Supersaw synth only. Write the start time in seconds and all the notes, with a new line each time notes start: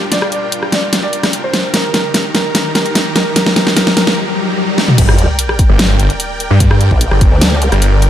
Already playing: G3 D4 F4 A#4 G5
1.74 D#3 D#4 G4 A#5
4.98 A#4 D5 G5